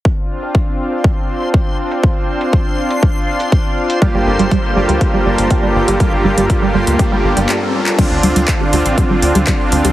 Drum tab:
CC |----------------|----------------|----------------|----------------|
HH |---x---x---x---x|x--xx--xx--xx--x|x--xx--xx--xx--x|x--xx--xx--x----|
CP |----------------|----------------|----------------|------------x--x|
BD |o---o---o---o---|o---o---o---o---|o---o---o---o---|o---o---o-------|

CC |x---------------|
HH |x-oxx-oxx-oxx-ox|
CP |----x-------x---|
BD |o---o---o---o---|